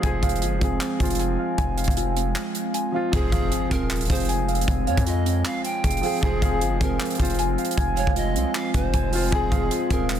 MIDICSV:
0, 0, Header, 1, 8, 480
1, 0, Start_track
1, 0, Key_signature, -4, "minor"
1, 0, Tempo, 387097
1, 42, Time_signature, 4, 2, 24, 8
1, 12644, End_track
2, 0, Start_track
2, 0, Title_t, "Synth keys"
2, 0, Program_c, 0, 88
2, 43, Note_on_c, 0, 80, 108
2, 280, Note_on_c, 0, 77, 85
2, 521, Note_on_c, 0, 65, 81
2, 760, Note_on_c, 0, 60, 86
2, 1468, Note_off_c, 0, 80, 0
2, 1483, Note_on_c, 0, 80, 98
2, 1709, Note_off_c, 0, 77, 0
2, 1724, Note_on_c, 0, 77, 81
2, 1942, Note_off_c, 0, 80, 0
2, 1957, Note_on_c, 0, 80, 111
2, 1961, Note_off_c, 0, 65, 0
2, 2187, Note_off_c, 0, 77, 0
2, 2201, Note_off_c, 0, 60, 0
2, 2202, Note_on_c, 0, 77, 90
2, 2443, Note_on_c, 0, 65, 99
2, 2682, Note_on_c, 0, 60, 83
2, 3388, Note_off_c, 0, 80, 0
2, 3402, Note_on_c, 0, 80, 92
2, 3631, Note_off_c, 0, 77, 0
2, 3646, Note_on_c, 0, 77, 84
2, 3864, Note_off_c, 0, 80, 0
2, 3878, Note_on_c, 0, 80, 101
2, 3882, Note_off_c, 0, 60, 0
2, 3883, Note_off_c, 0, 65, 0
2, 3884, Note_off_c, 0, 77, 0
2, 4116, Note_on_c, 0, 77, 93
2, 4368, Note_on_c, 0, 65, 95
2, 4602, Note_on_c, 0, 60, 83
2, 5302, Note_off_c, 0, 80, 0
2, 5317, Note_on_c, 0, 80, 92
2, 5540, Note_off_c, 0, 77, 0
2, 5555, Note_on_c, 0, 77, 91
2, 5792, Note_off_c, 0, 80, 0
2, 5805, Note_off_c, 0, 65, 0
2, 5807, Note_on_c, 0, 80, 110
2, 6026, Note_off_c, 0, 77, 0
2, 6041, Note_on_c, 0, 77, 92
2, 6042, Note_off_c, 0, 60, 0
2, 6286, Note_on_c, 0, 65, 92
2, 6519, Note_on_c, 0, 60, 82
2, 7240, Note_on_c, 0, 68, 96
2, 7244, Note_off_c, 0, 80, 0
2, 7470, Note_off_c, 0, 77, 0
2, 7485, Note_on_c, 0, 77, 82
2, 7720, Note_off_c, 0, 60, 0
2, 7721, Note_off_c, 0, 68, 0
2, 7723, Note_off_c, 0, 77, 0
2, 7723, Note_on_c, 0, 80, 109
2, 7724, Note_off_c, 0, 65, 0
2, 7961, Note_on_c, 0, 77, 94
2, 8202, Note_on_c, 0, 65, 82
2, 8440, Note_on_c, 0, 60, 83
2, 9148, Note_off_c, 0, 80, 0
2, 9163, Note_on_c, 0, 80, 96
2, 9390, Note_off_c, 0, 77, 0
2, 9405, Note_on_c, 0, 77, 84
2, 9623, Note_off_c, 0, 80, 0
2, 9638, Note_on_c, 0, 80, 115
2, 9642, Note_off_c, 0, 65, 0
2, 9868, Note_off_c, 0, 77, 0
2, 9881, Note_off_c, 0, 60, 0
2, 9883, Note_on_c, 0, 77, 91
2, 10124, Note_on_c, 0, 65, 99
2, 10363, Note_on_c, 0, 60, 83
2, 11068, Note_off_c, 0, 80, 0
2, 11083, Note_on_c, 0, 80, 99
2, 11311, Note_off_c, 0, 77, 0
2, 11326, Note_on_c, 0, 77, 89
2, 11544, Note_off_c, 0, 80, 0
2, 11559, Note_on_c, 0, 80, 99
2, 11562, Note_off_c, 0, 60, 0
2, 11563, Note_off_c, 0, 65, 0
2, 11564, Note_off_c, 0, 77, 0
2, 11797, Note_on_c, 0, 77, 91
2, 12049, Note_on_c, 0, 65, 95
2, 12283, Note_on_c, 0, 60, 84
2, 12644, Note_off_c, 0, 60, 0
2, 12644, Note_off_c, 0, 65, 0
2, 12644, Note_off_c, 0, 77, 0
2, 12644, Note_off_c, 0, 80, 0
2, 12644, End_track
3, 0, Start_track
3, 0, Title_t, "Pan flute"
3, 0, Program_c, 1, 75
3, 3884, Note_on_c, 1, 68, 113
3, 4560, Note_off_c, 1, 68, 0
3, 4603, Note_on_c, 1, 70, 85
3, 5053, Note_off_c, 1, 70, 0
3, 5081, Note_on_c, 1, 72, 75
3, 5309, Note_off_c, 1, 72, 0
3, 6043, Note_on_c, 1, 73, 77
3, 6271, Note_off_c, 1, 73, 0
3, 6283, Note_on_c, 1, 75, 85
3, 6733, Note_off_c, 1, 75, 0
3, 6760, Note_on_c, 1, 77, 91
3, 6989, Note_off_c, 1, 77, 0
3, 7001, Note_on_c, 1, 79, 85
3, 7678, Note_off_c, 1, 79, 0
3, 7722, Note_on_c, 1, 68, 110
3, 8399, Note_off_c, 1, 68, 0
3, 8443, Note_on_c, 1, 70, 80
3, 8894, Note_off_c, 1, 70, 0
3, 8922, Note_on_c, 1, 72, 83
3, 9150, Note_off_c, 1, 72, 0
3, 9882, Note_on_c, 1, 73, 96
3, 10110, Note_off_c, 1, 73, 0
3, 10121, Note_on_c, 1, 75, 88
3, 10573, Note_off_c, 1, 75, 0
3, 10602, Note_on_c, 1, 77, 84
3, 10830, Note_off_c, 1, 77, 0
3, 10842, Note_on_c, 1, 71, 85
3, 10978, Note_off_c, 1, 71, 0
3, 10978, Note_on_c, 1, 72, 85
3, 11519, Note_off_c, 1, 72, 0
3, 11563, Note_on_c, 1, 68, 115
3, 12239, Note_off_c, 1, 68, 0
3, 12283, Note_on_c, 1, 70, 86
3, 12644, Note_off_c, 1, 70, 0
3, 12644, End_track
4, 0, Start_track
4, 0, Title_t, "Grand piano"
4, 0, Program_c, 2, 0
4, 0, Control_c, 2, 64, 127
4, 20, Note_on_c, 2, 53, 110
4, 45, Note_on_c, 2, 60, 99
4, 58, Control_c, 2, 64, 0
4, 69, Note_on_c, 2, 68, 119
4, 246, Control_c, 2, 64, 127
4, 563, Note_off_c, 2, 53, 0
4, 576, Note_off_c, 2, 60, 0
4, 588, Note_off_c, 2, 68, 0
4, 735, Note_on_c, 2, 53, 81
4, 759, Note_on_c, 2, 60, 72
4, 784, Note_on_c, 2, 68, 92
4, 1108, Note_off_c, 2, 53, 0
4, 1120, Note_off_c, 2, 60, 0
4, 1133, Note_off_c, 2, 68, 0
4, 1218, Note_on_c, 2, 53, 81
4, 1243, Note_on_c, 2, 60, 81
4, 1267, Note_on_c, 2, 65, 94
4, 1937, Note_off_c, 2, 53, 0
4, 1949, Note_off_c, 2, 60, 0
4, 1961, Note_off_c, 2, 65, 0
4, 3620, Note_on_c, 2, 53, 85
4, 3645, Note_on_c, 2, 60, 78
4, 3669, Note_on_c, 2, 65, 99
4, 3811, Note_off_c, 2, 53, 0
4, 3824, Note_off_c, 2, 60, 0
4, 3836, Note_off_c, 2, 65, 0
4, 3861, Note_on_c, 2, 53, 112
4, 3886, Note_on_c, 2, 60, 105
4, 3899, Control_c, 2, 64, 0
4, 3911, Note_on_c, 2, 68, 117
4, 4142, Control_c, 2, 64, 127
4, 4404, Note_off_c, 2, 53, 0
4, 4417, Note_off_c, 2, 60, 0
4, 4429, Note_off_c, 2, 68, 0
4, 4582, Note_on_c, 2, 53, 81
4, 4606, Note_on_c, 2, 60, 74
4, 4631, Note_on_c, 2, 68, 91
4, 4951, Note_off_c, 2, 53, 0
4, 4964, Note_off_c, 2, 60, 0
4, 4976, Note_off_c, 2, 68, 0
4, 5052, Note_on_c, 2, 53, 87
4, 5077, Note_on_c, 2, 60, 81
4, 5101, Note_on_c, 2, 68, 97
4, 5774, Note_off_c, 2, 53, 0
4, 5786, Note_off_c, 2, 60, 0
4, 5798, Note_off_c, 2, 68, 0
4, 7457, Note_on_c, 2, 53, 94
4, 7482, Note_on_c, 2, 60, 85
4, 7506, Note_on_c, 2, 68, 103
4, 7650, Note_off_c, 2, 53, 0
4, 7662, Note_off_c, 2, 60, 0
4, 7674, Note_off_c, 2, 68, 0
4, 7700, Note_on_c, 2, 53, 117
4, 7725, Note_on_c, 2, 60, 102
4, 7735, Control_c, 2, 64, 0
4, 7750, Note_on_c, 2, 68, 127
4, 7938, Control_c, 2, 64, 127
4, 8243, Note_off_c, 2, 53, 0
4, 8256, Note_off_c, 2, 60, 0
4, 8268, Note_off_c, 2, 68, 0
4, 8415, Note_on_c, 2, 53, 87
4, 8439, Note_on_c, 2, 60, 74
4, 8464, Note_on_c, 2, 68, 88
4, 8788, Note_off_c, 2, 53, 0
4, 8800, Note_off_c, 2, 60, 0
4, 8813, Note_off_c, 2, 68, 0
4, 8898, Note_on_c, 2, 53, 84
4, 8923, Note_on_c, 2, 60, 81
4, 8947, Note_on_c, 2, 65, 98
4, 9617, Note_off_c, 2, 53, 0
4, 9629, Note_off_c, 2, 60, 0
4, 9641, Note_off_c, 2, 65, 0
4, 11301, Note_on_c, 2, 53, 88
4, 11325, Note_on_c, 2, 60, 82
4, 11350, Note_on_c, 2, 65, 102
4, 11491, Note_off_c, 2, 53, 0
4, 11504, Note_off_c, 2, 60, 0
4, 11516, Note_off_c, 2, 65, 0
4, 11542, Note_on_c, 2, 53, 108
4, 11566, Note_on_c, 2, 60, 107
4, 11579, Control_c, 2, 64, 0
4, 11591, Note_on_c, 2, 68, 122
4, 11831, Control_c, 2, 64, 127
4, 12084, Note_off_c, 2, 53, 0
4, 12096, Note_off_c, 2, 60, 0
4, 12109, Note_off_c, 2, 68, 0
4, 12261, Note_on_c, 2, 53, 79
4, 12286, Note_on_c, 2, 60, 73
4, 12311, Note_on_c, 2, 68, 92
4, 12631, Note_off_c, 2, 53, 0
4, 12644, Note_off_c, 2, 60, 0
4, 12644, Note_off_c, 2, 68, 0
4, 12644, End_track
5, 0, Start_track
5, 0, Title_t, "Ambient pad"
5, 0, Program_c, 3, 92
5, 0, Note_on_c, 3, 56, 72
5, 42, Note_on_c, 3, 53, 80
5, 42, Note_on_c, 3, 60, 85
5, 3832, Note_off_c, 3, 56, 0
5, 3843, Note_off_c, 3, 53, 0
5, 3843, Note_off_c, 3, 60, 0
5, 3882, Note_on_c, 3, 53, 76
5, 3882, Note_on_c, 3, 56, 70
5, 3883, Note_on_c, 3, 60, 85
5, 7684, Note_off_c, 3, 60, 0
5, 7721, Note_on_c, 3, 60, 84
5, 12644, Note_off_c, 3, 53, 0
5, 12644, Note_off_c, 3, 56, 0
5, 12644, Note_off_c, 3, 60, 0
5, 12644, End_track
6, 0, Start_track
6, 0, Title_t, "808-style bass"
6, 0, Program_c, 4, 38
6, 42, Note_on_c, 4, 29, 112
6, 272, Note_off_c, 4, 29, 0
6, 281, Note_on_c, 4, 29, 106
6, 522, Note_on_c, 4, 31, 100
6, 540, Note_off_c, 4, 29, 0
6, 649, Note_on_c, 4, 29, 97
6, 667, Note_off_c, 4, 31, 0
6, 756, Note_off_c, 4, 29, 0
6, 762, Note_on_c, 4, 29, 101
6, 992, Note_off_c, 4, 29, 0
6, 1241, Note_on_c, 4, 29, 105
6, 1702, Note_off_c, 4, 29, 0
6, 1962, Note_on_c, 4, 29, 110
6, 2314, Note_off_c, 4, 29, 0
6, 2328, Note_on_c, 4, 29, 106
6, 2921, Note_off_c, 4, 29, 0
6, 3882, Note_on_c, 4, 29, 110
6, 4112, Note_off_c, 4, 29, 0
6, 4121, Note_on_c, 4, 29, 104
6, 4352, Note_off_c, 4, 29, 0
6, 4602, Note_on_c, 4, 27, 104
6, 5063, Note_off_c, 4, 27, 0
6, 5082, Note_on_c, 4, 29, 105
6, 5773, Note_off_c, 4, 29, 0
6, 5802, Note_on_c, 4, 29, 109
6, 6041, Note_on_c, 4, 41, 99
6, 6060, Note_off_c, 4, 29, 0
6, 6162, Note_off_c, 4, 41, 0
6, 6169, Note_on_c, 4, 41, 103
6, 6738, Note_off_c, 4, 41, 0
6, 7241, Note_on_c, 4, 29, 110
6, 7472, Note_off_c, 4, 29, 0
6, 7722, Note_on_c, 4, 29, 118
6, 7952, Note_off_c, 4, 29, 0
6, 7962, Note_on_c, 4, 29, 108
6, 8202, Note_on_c, 4, 31, 99
6, 8221, Note_off_c, 4, 29, 0
6, 8328, Note_on_c, 4, 29, 102
6, 8347, Note_off_c, 4, 31, 0
6, 8436, Note_off_c, 4, 29, 0
6, 8442, Note_on_c, 4, 29, 105
6, 8672, Note_off_c, 4, 29, 0
6, 8922, Note_on_c, 4, 29, 107
6, 9382, Note_off_c, 4, 29, 0
6, 9642, Note_on_c, 4, 29, 112
6, 9994, Note_off_c, 4, 29, 0
6, 10008, Note_on_c, 4, 29, 108
6, 10362, Note_on_c, 4, 36, 104
6, 10380, Note_off_c, 4, 29, 0
6, 10482, Note_off_c, 4, 36, 0
6, 10842, Note_on_c, 4, 29, 105
6, 11072, Note_off_c, 4, 29, 0
6, 11082, Note_on_c, 4, 29, 107
6, 11542, Note_off_c, 4, 29, 0
6, 11562, Note_on_c, 4, 29, 115
6, 11792, Note_off_c, 4, 29, 0
6, 11801, Note_on_c, 4, 29, 106
6, 12032, Note_off_c, 4, 29, 0
6, 12282, Note_on_c, 4, 27, 101
6, 12644, Note_off_c, 4, 27, 0
6, 12644, End_track
7, 0, Start_track
7, 0, Title_t, "Impact"
7, 0, Program_c, 5, 103
7, 3882, Note_on_c, 5, 60, 91
7, 5802, Note_off_c, 5, 60, 0
7, 12644, End_track
8, 0, Start_track
8, 0, Title_t, "Drums"
8, 41, Note_on_c, 9, 42, 72
8, 42, Note_on_c, 9, 36, 114
8, 165, Note_off_c, 9, 42, 0
8, 166, Note_off_c, 9, 36, 0
8, 281, Note_on_c, 9, 36, 89
8, 281, Note_on_c, 9, 42, 73
8, 361, Note_off_c, 9, 42, 0
8, 361, Note_on_c, 9, 42, 57
8, 405, Note_off_c, 9, 36, 0
8, 440, Note_off_c, 9, 42, 0
8, 440, Note_on_c, 9, 42, 45
8, 520, Note_off_c, 9, 42, 0
8, 520, Note_on_c, 9, 42, 81
8, 644, Note_off_c, 9, 42, 0
8, 762, Note_on_c, 9, 36, 93
8, 764, Note_on_c, 9, 42, 75
8, 886, Note_off_c, 9, 36, 0
8, 888, Note_off_c, 9, 42, 0
8, 1000, Note_on_c, 9, 39, 119
8, 1003, Note_on_c, 9, 42, 75
8, 1124, Note_off_c, 9, 39, 0
8, 1127, Note_off_c, 9, 42, 0
8, 1241, Note_on_c, 9, 42, 57
8, 1242, Note_on_c, 9, 36, 93
8, 1305, Note_off_c, 9, 42, 0
8, 1305, Note_on_c, 9, 42, 56
8, 1366, Note_off_c, 9, 36, 0
8, 1369, Note_off_c, 9, 42, 0
8, 1369, Note_on_c, 9, 42, 55
8, 1425, Note_off_c, 9, 42, 0
8, 1425, Note_on_c, 9, 42, 56
8, 1480, Note_off_c, 9, 42, 0
8, 1480, Note_on_c, 9, 42, 77
8, 1604, Note_off_c, 9, 42, 0
8, 1961, Note_on_c, 9, 42, 71
8, 1962, Note_on_c, 9, 36, 116
8, 2085, Note_off_c, 9, 42, 0
8, 2086, Note_off_c, 9, 36, 0
8, 2202, Note_on_c, 9, 42, 70
8, 2282, Note_off_c, 9, 42, 0
8, 2282, Note_on_c, 9, 42, 58
8, 2328, Note_on_c, 9, 36, 99
8, 2362, Note_off_c, 9, 42, 0
8, 2362, Note_on_c, 9, 42, 46
8, 2441, Note_off_c, 9, 42, 0
8, 2441, Note_on_c, 9, 42, 80
8, 2452, Note_off_c, 9, 36, 0
8, 2565, Note_off_c, 9, 42, 0
8, 2685, Note_on_c, 9, 42, 75
8, 2809, Note_off_c, 9, 42, 0
8, 2921, Note_on_c, 9, 39, 120
8, 2924, Note_on_c, 9, 42, 78
8, 3045, Note_off_c, 9, 39, 0
8, 3048, Note_off_c, 9, 42, 0
8, 3160, Note_on_c, 9, 42, 66
8, 3284, Note_off_c, 9, 42, 0
8, 3400, Note_on_c, 9, 42, 77
8, 3524, Note_off_c, 9, 42, 0
8, 3881, Note_on_c, 9, 42, 75
8, 3882, Note_on_c, 9, 36, 118
8, 4005, Note_off_c, 9, 42, 0
8, 4006, Note_off_c, 9, 36, 0
8, 4121, Note_on_c, 9, 36, 93
8, 4123, Note_on_c, 9, 42, 71
8, 4245, Note_off_c, 9, 36, 0
8, 4247, Note_off_c, 9, 42, 0
8, 4361, Note_on_c, 9, 42, 84
8, 4485, Note_off_c, 9, 42, 0
8, 4602, Note_on_c, 9, 36, 95
8, 4605, Note_on_c, 9, 42, 80
8, 4726, Note_off_c, 9, 36, 0
8, 4729, Note_off_c, 9, 42, 0
8, 4841, Note_on_c, 9, 39, 122
8, 4842, Note_on_c, 9, 42, 61
8, 4906, Note_off_c, 9, 42, 0
8, 4906, Note_on_c, 9, 42, 60
8, 4965, Note_off_c, 9, 39, 0
8, 4969, Note_off_c, 9, 42, 0
8, 4969, Note_on_c, 9, 42, 64
8, 5026, Note_off_c, 9, 42, 0
8, 5026, Note_on_c, 9, 42, 64
8, 5082, Note_off_c, 9, 42, 0
8, 5082, Note_on_c, 9, 36, 100
8, 5082, Note_on_c, 9, 42, 68
8, 5146, Note_off_c, 9, 42, 0
8, 5146, Note_on_c, 9, 42, 61
8, 5206, Note_off_c, 9, 36, 0
8, 5209, Note_off_c, 9, 42, 0
8, 5209, Note_on_c, 9, 42, 50
8, 5265, Note_off_c, 9, 42, 0
8, 5265, Note_on_c, 9, 42, 39
8, 5320, Note_off_c, 9, 42, 0
8, 5320, Note_on_c, 9, 42, 79
8, 5444, Note_off_c, 9, 42, 0
8, 5562, Note_on_c, 9, 42, 38
8, 5642, Note_off_c, 9, 42, 0
8, 5642, Note_on_c, 9, 42, 51
8, 5722, Note_off_c, 9, 42, 0
8, 5722, Note_on_c, 9, 42, 63
8, 5801, Note_off_c, 9, 42, 0
8, 5801, Note_on_c, 9, 42, 73
8, 5802, Note_on_c, 9, 36, 120
8, 5925, Note_off_c, 9, 42, 0
8, 5926, Note_off_c, 9, 36, 0
8, 6041, Note_on_c, 9, 42, 44
8, 6165, Note_off_c, 9, 42, 0
8, 6168, Note_on_c, 9, 36, 101
8, 6169, Note_on_c, 9, 42, 81
8, 6280, Note_off_c, 9, 42, 0
8, 6280, Note_on_c, 9, 42, 82
8, 6292, Note_off_c, 9, 36, 0
8, 6404, Note_off_c, 9, 42, 0
8, 6525, Note_on_c, 9, 42, 71
8, 6649, Note_off_c, 9, 42, 0
8, 6761, Note_on_c, 9, 39, 124
8, 6763, Note_on_c, 9, 42, 73
8, 6885, Note_off_c, 9, 39, 0
8, 6887, Note_off_c, 9, 42, 0
8, 7000, Note_on_c, 9, 42, 68
8, 7124, Note_off_c, 9, 42, 0
8, 7242, Note_on_c, 9, 36, 89
8, 7242, Note_on_c, 9, 42, 85
8, 7322, Note_off_c, 9, 42, 0
8, 7322, Note_on_c, 9, 42, 66
8, 7366, Note_off_c, 9, 36, 0
8, 7402, Note_off_c, 9, 42, 0
8, 7402, Note_on_c, 9, 42, 49
8, 7476, Note_on_c, 9, 46, 67
8, 7526, Note_off_c, 9, 42, 0
8, 7600, Note_off_c, 9, 46, 0
8, 7722, Note_on_c, 9, 36, 119
8, 7722, Note_on_c, 9, 42, 74
8, 7846, Note_off_c, 9, 36, 0
8, 7846, Note_off_c, 9, 42, 0
8, 7962, Note_on_c, 9, 36, 94
8, 7964, Note_on_c, 9, 42, 73
8, 8086, Note_off_c, 9, 36, 0
8, 8088, Note_off_c, 9, 42, 0
8, 8201, Note_on_c, 9, 42, 82
8, 8325, Note_off_c, 9, 42, 0
8, 8442, Note_on_c, 9, 36, 101
8, 8446, Note_on_c, 9, 42, 79
8, 8566, Note_off_c, 9, 36, 0
8, 8570, Note_off_c, 9, 42, 0
8, 8682, Note_on_c, 9, 39, 122
8, 8682, Note_on_c, 9, 42, 63
8, 8746, Note_off_c, 9, 42, 0
8, 8746, Note_on_c, 9, 42, 65
8, 8806, Note_off_c, 9, 39, 0
8, 8809, Note_off_c, 9, 42, 0
8, 8809, Note_on_c, 9, 42, 63
8, 8866, Note_off_c, 9, 42, 0
8, 8866, Note_on_c, 9, 42, 63
8, 8922, Note_off_c, 9, 42, 0
8, 8922, Note_on_c, 9, 36, 94
8, 8922, Note_on_c, 9, 42, 71
8, 8986, Note_off_c, 9, 42, 0
8, 8986, Note_on_c, 9, 42, 61
8, 9046, Note_off_c, 9, 36, 0
8, 9049, Note_off_c, 9, 42, 0
8, 9049, Note_on_c, 9, 42, 51
8, 9106, Note_off_c, 9, 42, 0
8, 9106, Note_on_c, 9, 42, 40
8, 9161, Note_off_c, 9, 42, 0
8, 9161, Note_on_c, 9, 42, 79
8, 9285, Note_off_c, 9, 42, 0
8, 9402, Note_on_c, 9, 42, 39
8, 9482, Note_off_c, 9, 42, 0
8, 9482, Note_on_c, 9, 42, 49
8, 9562, Note_off_c, 9, 42, 0
8, 9562, Note_on_c, 9, 42, 65
8, 9641, Note_off_c, 9, 42, 0
8, 9641, Note_on_c, 9, 42, 75
8, 9642, Note_on_c, 9, 36, 127
8, 9765, Note_off_c, 9, 42, 0
8, 9766, Note_off_c, 9, 36, 0
8, 9883, Note_on_c, 9, 42, 74
8, 10007, Note_off_c, 9, 42, 0
8, 10008, Note_on_c, 9, 36, 105
8, 10121, Note_on_c, 9, 42, 81
8, 10132, Note_off_c, 9, 36, 0
8, 10245, Note_off_c, 9, 42, 0
8, 10365, Note_on_c, 9, 42, 70
8, 10489, Note_off_c, 9, 42, 0
8, 10601, Note_on_c, 9, 39, 123
8, 10603, Note_on_c, 9, 42, 75
8, 10725, Note_off_c, 9, 39, 0
8, 10727, Note_off_c, 9, 42, 0
8, 10839, Note_on_c, 9, 42, 69
8, 10842, Note_on_c, 9, 36, 100
8, 10963, Note_off_c, 9, 42, 0
8, 10966, Note_off_c, 9, 36, 0
8, 11080, Note_on_c, 9, 42, 81
8, 11082, Note_on_c, 9, 36, 88
8, 11204, Note_off_c, 9, 42, 0
8, 11206, Note_off_c, 9, 36, 0
8, 11317, Note_on_c, 9, 46, 67
8, 11441, Note_off_c, 9, 46, 0
8, 11561, Note_on_c, 9, 42, 73
8, 11562, Note_on_c, 9, 36, 127
8, 11685, Note_off_c, 9, 42, 0
8, 11686, Note_off_c, 9, 36, 0
8, 11801, Note_on_c, 9, 36, 95
8, 11803, Note_on_c, 9, 42, 71
8, 11925, Note_off_c, 9, 36, 0
8, 11927, Note_off_c, 9, 42, 0
8, 12041, Note_on_c, 9, 42, 81
8, 12165, Note_off_c, 9, 42, 0
8, 12282, Note_on_c, 9, 36, 97
8, 12286, Note_on_c, 9, 42, 79
8, 12406, Note_off_c, 9, 36, 0
8, 12410, Note_off_c, 9, 42, 0
8, 12521, Note_on_c, 9, 39, 122
8, 12522, Note_on_c, 9, 42, 63
8, 12585, Note_off_c, 9, 42, 0
8, 12585, Note_on_c, 9, 42, 65
8, 12644, Note_off_c, 9, 39, 0
8, 12644, Note_off_c, 9, 42, 0
8, 12644, End_track
0, 0, End_of_file